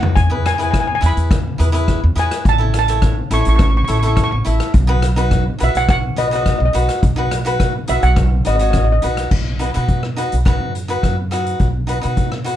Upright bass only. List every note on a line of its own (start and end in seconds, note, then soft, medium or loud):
0.00 0.14 D#2 medium
0.16 0.90 E2 medium
1.03 1.15 E2 medium
1.17 1.54 E2 medium
1.60 1.97 E2 medium
2.04 2.15 E2 loud
2.16 2.29 E2 medium
2.45 3.19 A1 loud
3.31 3.44 A1 medium
3.47 3.83 A1 medium
3.89 4.26 A1 loud
4.32 4.44 A1 medium
4.46 4.59 A1 medium
4.74 5.48 B1 loud
5.61 5.73 B1 medium
5.75 6.12 B1 medium
6.16 6.54 B1 medium
6.60 6.72 B1 medium
6.75 6.87 B1 medium
7.03 7.77 B1 loud
7.89 8.02 B1 medium
8.03 8.40 B1 medium
8.46 8.72 G#1 medium
8.74 9.00 A1 medium
9.04 9.30 B1 medium
9.31 9.69 B1 medium
9.77 10.25 B2 medium
10.33 10.57 B1 medium
10.60 10.97 F#2 medium
11.03 11.53 F#2 medium
11.60 11.97 B1 medium
12.05 12.54 B2 medium